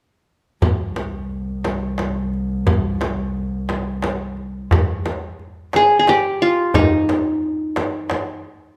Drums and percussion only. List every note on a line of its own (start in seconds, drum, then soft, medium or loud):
0.62 darbuka dum medium
0.62 frame drum medium
0.96 frame drum medium
1.64 darbuka tek medium
1.64 frame drum medium
1.98 darbuka tek medium
1.98 frame drum medium
2.34 darbuka ka soft
2.67 frame drum medium
2.67 darbuka dum medium
3.01 darbuka tek medium
3.01 frame drum medium
3.69 darbuka tek medium
3.69 frame drum medium
4.02 darbuka tek medium
4.02 frame drum medium
4.37 darbuka ka soft
4.71 darbuka dum medium
4.71 frame drum medium
5.06 darbuka tek medium
5.06 frame drum medium
5.39 darbuka ka soft
5.73 darbuka tek medium
5.73 frame drum medium
6.07 darbuka tek medium
6.07 frame drum medium
6.74 darbuka dum medium
6.74 frame drum medium
7.09 darbuka tek medium
7.09 frame drum medium
7.43 darbuka ka soft
7.76 darbuka tek medium
7.76 frame drum medium
8.10 darbuka tek medium
8.10 frame drum medium